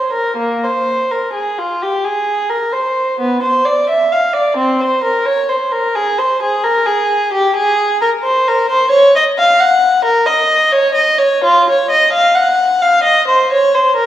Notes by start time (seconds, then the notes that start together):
Already playing: C5
0.13 A#4
0.37 A#3
0.63 C5
1.11 A#4
1.33 G#4
1.58 F4
1.82 G4
2.05 G#4
2.49 A#4
2.72 C5
3.20 B3
3.43 C5
3.65 D5
3.89 E5
4.12 F5
4.33 D5
4.57 C4
4.81 C5
5.04 A#4
5.26 C#5
5.49 C5
5.72 A#4
5.95 G#4
6.18 C5
6.43 G#4
6.64 A#4
6.87 G#4
7.33 G4
7.56 G#4
8.01 A#4
8.23 C5
8.48 A#4
8.70 C5
8.91 C#5
9.16 D#5
9.38 F5
9.60 F#5
10.05 A#4
10.26 D#5
10.72 C#5
10.95 D#5
11.18 C#5
11.44 F4
11.70 C#5
11.91 D#5
12.13 F5
12.35 F#5
12.82 F5
13.03 D#5
13.28 C5
13.52 C#5
13.75 C5
13.96 A#4